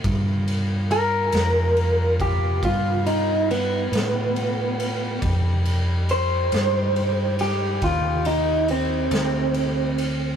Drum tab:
RD |xxxxxxxxxxxx|xxxxxxxxxxxx|
SD |---o-----o--|---o-oo--o--|
BD |o----oo-----|o-----o-----|